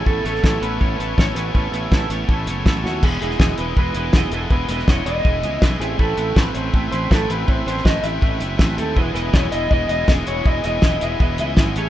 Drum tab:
CC |----------------|----------------|x---------------|----------------|
HH |--x---x---x---x-|--x---x---x-----|--x---x---x---x-|--x---x---x---x-|
SD |--ooo-------o---|----o-------o-o-|---oo-------o---|--ooo-------o---|
BD |o---o---o---o---|o---o---o---o---|o---o---o---o---|o---o---o---o---|

CC |----------------|----------------|----------------|----------------|
HH |--x---x---x---x-|--x---x---x---x-|--x---x---x---x-|--x---x---x---x-|
SD |----o-------o---|--ooo-------o---|--o-o-------o---|--o-o-------o---|
BD |o---o---o---o---|o---o---o---o---|o---o---o---o---|o---o---o---o---|